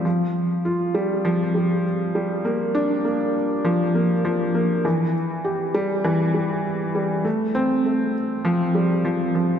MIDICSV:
0, 0, Header, 1, 2, 480
1, 0, Start_track
1, 0, Tempo, 600000
1, 40, Time_signature, 4, 2, 24, 8
1, 7674, End_track
2, 0, Start_track
2, 0, Title_t, "Felt piano"
2, 0, Program_c, 0, 0
2, 0, Control_c, 0, 64, 127
2, 40, Note_on_c, 0, 53, 76
2, 50, Control_c, 0, 64, 0
2, 176, Control_c, 0, 64, 127
2, 268, Note_off_c, 0, 53, 0
2, 520, Note_on_c, 0, 65, 68
2, 748, Note_off_c, 0, 65, 0
2, 756, Note_on_c, 0, 55, 92
2, 986, Note_off_c, 0, 55, 0
2, 997, Note_on_c, 0, 53, 95
2, 1135, Note_off_c, 0, 53, 0
2, 1238, Note_on_c, 0, 55, 69
2, 1467, Note_off_c, 0, 55, 0
2, 1720, Note_on_c, 0, 55, 73
2, 1948, Note_off_c, 0, 55, 0
2, 1957, Note_on_c, 0, 58, 78
2, 2186, Note_off_c, 0, 58, 0
2, 2196, Note_on_c, 0, 62, 96
2, 2426, Note_off_c, 0, 62, 0
2, 2437, Note_on_c, 0, 58, 70
2, 2666, Note_off_c, 0, 58, 0
2, 2916, Note_on_c, 0, 53, 94
2, 3055, Note_off_c, 0, 53, 0
2, 3159, Note_on_c, 0, 58, 70
2, 3296, Note_off_c, 0, 58, 0
2, 3398, Note_on_c, 0, 53, 90
2, 3627, Note_off_c, 0, 53, 0
2, 3636, Note_on_c, 0, 58, 74
2, 3866, Note_off_c, 0, 58, 0
2, 3878, Note_on_c, 0, 52, 83
2, 3892, Control_c, 0, 64, 0
2, 4017, Control_c, 0, 64, 127
2, 4107, Note_off_c, 0, 52, 0
2, 4356, Note_on_c, 0, 67, 73
2, 4586, Note_off_c, 0, 67, 0
2, 4596, Note_on_c, 0, 55, 102
2, 4826, Note_off_c, 0, 55, 0
2, 4835, Note_on_c, 0, 52, 100
2, 4974, Note_off_c, 0, 52, 0
2, 5076, Note_on_c, 0, 55, 77
2, 5306, Note_off_c, 0, 55, 0
2, 5558, Note_on_c, 0, 55, 74
2, 5787, Note_off_c, 0, 55, 0
2, 5796, Note_on_c, 0, 57, 80
2, 5811, Control_c, 0, 64, 0
2, 5939, Control_c, 0, 64, 127
2, 6026, Note_off_c, 0, 57, 0
2, 6038, Note_on_c, 0, 60, 98
2, 6267, Note_off_c, 0, 60, 0
2, 6280, Note_on_c, 0, 57, 69
2, 6508, Note_off_c, 0, 57, 0
2, 6756, Note_on_c, 0, 53, 96
2, 6895, Note_off_c, 0, 53, 0
2, 6998, Note_on_c, 0, 55, 73
2, 7227, Note_off_c, 0, 55, 0
2, 7238, Note_on_c, 0, 53, 90
2, 7467, Note_off_c, 0, 53, 0
2, 7479, Note_on_c, 0, 53, 73
2, 7674, Note_off_c, 0, 53, 0
2, 7674, End_track
0, 0, End_of_file